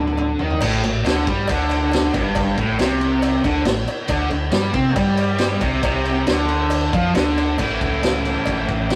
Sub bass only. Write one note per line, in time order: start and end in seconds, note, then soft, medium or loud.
0.00 0.36 D2 loud
0.40 0.60 D#2 loud
0.62 0.82 A1 loud
0.84 1.04 A1 medium
1.06 1.26 D2 loud
1.27 1.47 G2 loud
1.50 2.10 D2 loud
2.14 2.55 G1 loud
2.58 2.78 A1 loud
2.80 3.41 C2 loud
3.44 3.64 D2 medium
3.65 3.86 A1 medium
4.09 4.30 D2 loud
4.31 4.52 D2 medium
4.52 4.73 G2 loud
4.74 4.95 C3 loud
4.96 5.58 G2 loud
5.61 5.82 C2 loud
5.83 6.24 C2 loud
6.28 6.89 D2 loud
6.93 7.13 F2 loud
7.16 7.56 D2 loud
7.59 7.78 A1 loud
7.81 8.37 C#2 medium
8.47 8.65 A1 loud
8.69 8.95 A1 medium